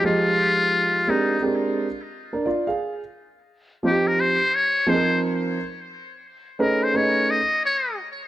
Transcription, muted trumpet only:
X:1
M:4/4
L:1/16
Q:"Swing 16ths" 1/4=87
K:Ebmix
V:1 name="Muted trumpet"
F6 E2 z8 | z6 G B c2 d2 c2 z2 | z6 B c ^c2 ^d2 c2 z2 |]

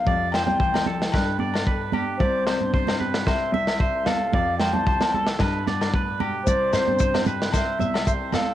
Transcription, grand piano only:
X:1
M:4/4
L:1/16
Q:"Swing 16ths" 1/4=112
K:C
V:1 name="Grand piano" clef=bass
F,,3 C,,4- C,, G,,2 G,,6 | C,,3 G,,6- G,, C,,6 | F,,3 C,,4- C,, G,,2 G,,6 | C,,3 G,,6- G,, C,,6 |]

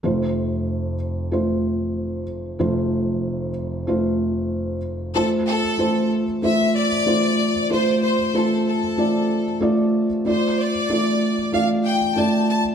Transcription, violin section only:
X:1
M:4/4
L:1/8
Q:1/4=94
K:F
V:1 name="Violin section"
z8 | z8 | A A2 z e d3 | c c A A3 z2 |
c d3 f g a a |]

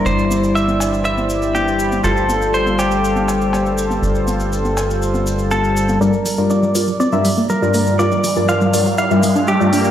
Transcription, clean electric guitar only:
X:1
M:4/4
L:1/8
Q:1/4=121
K:Gdor
V:1 name="Clean electric guitar"
c2 e2 e2 G2 | A2 c G4- G- | G6 A2 | B2 d2 d2 B2 |
d2 f2 f2 G2 |]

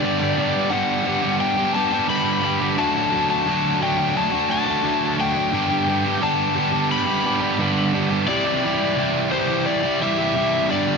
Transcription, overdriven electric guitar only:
X:1
M:4/4
L:1/16
Q:1/4=87
K:G
V:1 name="Overdriven electric guitar"
[G,,D,G,B,DG] [G,B,DG] [G,B,DG]2 [G,,D,G,B,DG]2 [G,B,DG] [G,B,DG]2 [G,B,DG] [G,B,DG] [G,B,DG] [G,,D,G,B,DG]2 [G,B,DG] [G,B,DG] | [D,F,A,DF] [A,DF] [F,A,DF]2 [D,F,A,DF]2 [F,A,DF] [A,DF]2 [A,DF] [F,A,DF] [A,DF] [D,F,A,DF]2 [F,A,DF] [A,DF] | [G,,D,G,B,DG] [G,B,DG] [G,B,DG]2 [G,,D,G,B,DG]2 [G,B,DG] [G,B,DG]2 [G,B,DG] [G,B,DG] [G,B,DG] [G,,D,G,B,DG]2 [G,B,DG] [G,B,DG] | [C,E,G,EG] [G,EG] [E,G,EG]2 [C,E,G,EG]2 [E,G,EG] [G,EG]2 [G,EG] [E,G,EG] [G,EG] [C,E,G,EG]2 [G,,D,G,B,DG] [G,B,DG] |]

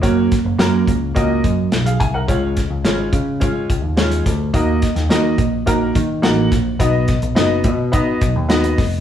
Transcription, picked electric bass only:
X:1
M:4/4
L:1/16
Q:1/4=106
K:F#
V:1 name="Picked electric bass" clef=bass
F,,,2 z F,,, F,,2 C,,2 C,,2 F,,2 B,,,2 ^B,,,2 | C,,3 C,, G,,,2 C,3 z C,, D,,3 =D,,2 | D,,2 z D,, D,2 A,,,2 A,,,2 D,2 =A,,,2 ^A,,,2 | B,,,3 B,,, F,,,2 B,,3 z B,,, D,,3 E,,,2 |]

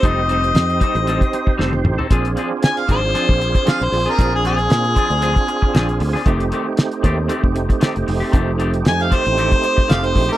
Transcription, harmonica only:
X:1
M:4/4
L:1/16
Q:"Swing 16ths" 1/4=116
K:Bb
V:1 name="Harmonica"
e12 z4 | z4 _a f c6 f c2 B- | B _A A12 z2 | z16 |
z4 _a f c6 f c2 B |]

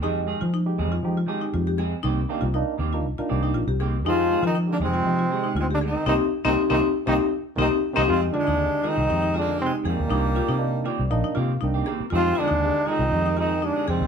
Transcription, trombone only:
X:1
M:4/4
L:1/16
Q:1/4=119
K:Fdor
V:1 name="Trombone"
z16 | z16 | F3 E2 D C6 C D E2 | E z2 E z E z2 E z3 E z2 E |
F2 D4 E4 D2 C2 B,2- | B,6 z8 z2 | F2 D4 E4 E2 D2 C2 |]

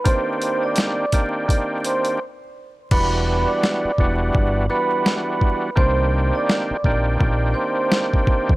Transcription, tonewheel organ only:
X:1
M:4/4
L:1/8
Q:"Swing 16ths" 1/4=84
K:Em
V:1 name="Tonewheel organ"
[_E,_B,CDG]3 [E,B,CDG] [E,B,CDG]2 z2 | [E,G,B,DF]3 [E,G,B,DF]2 [E,G,B,DF]3 | [_E,_B,CDG]3 [E,B,CDG] [E,B,CDG]4 |]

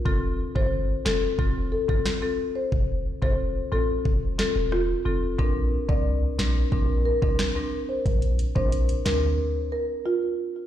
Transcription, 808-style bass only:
X:1
M:4/4
L:1/16
Q:1/4=90
K:F
V:1 name="808-style bass" clef=bass
F,,,3 G,,,3 F,,,2 F,,,3 G,,, z4 | F,,,3 F,,,3 A,,,2 F,,,3 E,,,3 F,,,2 | B,,,3 C,,3 B,,,2 B,,,3 C,, z4 | B,,,3 B,,,3 D,,2 z8 |]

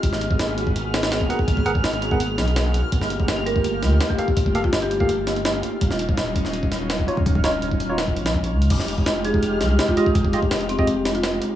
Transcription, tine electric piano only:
X:1
M:4/4
L:1/16
Q:1/4=166
K:Eb
V:1 name="Tine electric piano"
z12 z2 [_CAB_g] z | z2 [_CAB_g] z4 [CABg] z8 | z12 z2 [B,G=Af] z | z2 [B,G=Af] z4 [B,GAf] z8 |
z12 z2 [_G,EF_d] z | z2 [_G,EF_d] z4 [G,EFd] z8 | z12 z2 [A,FGe] z | z2 [A,FGe] z4 [A,FGe] z8 |]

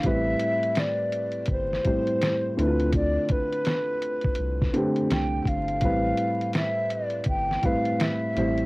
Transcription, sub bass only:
X:1
M:4/4
L:1/8
Q:"Swing 16ths" 1/4=83
K:Am
V:1 name="Sub bass" clef=bass
A,,, z3 G,,, z2 D,,- | D,, z3 C,, z C,, G,,, | A,,, z3 G,,, z2 A,,, |]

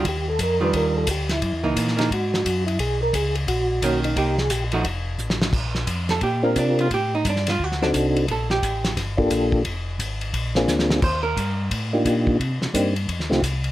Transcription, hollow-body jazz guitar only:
X:1
M:4/4
L:1/8
Q:"Swing" 1/4=175
K:Bb
V:1 name="Hollow-body jazz guitar"
z3 [E,G,DF]3 z2 | z [_F,B,E]2 [F,B,E] z4 | z6 [^D,^A,^C]2 | [B,EG] z2 [F,A,E_G] z4 |
z3 A G B, D F | G E D F ^F D z2 | A G3 z4 | z8 |
c B3 z4 | z8 |]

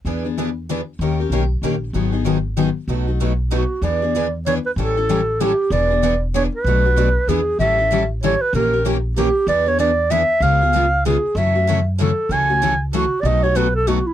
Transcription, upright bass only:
X:1
M:3/4
L:1/8
Q:"Swing" 1/4=191
K:E
V:1 name="Upright bass" clef=bass
E,,6 | D,,2 B,,,2 ^A,,,2 | G,,,6 | B,,,6 |
[K:Emix] E,,6 | A,,,6 | E,,,6 | B,,,4 E,,2 |
A,,,6 | ^A,,,6 | E,,6 | C,,6 |
F,,6 | C,,6 | B,,,6 |]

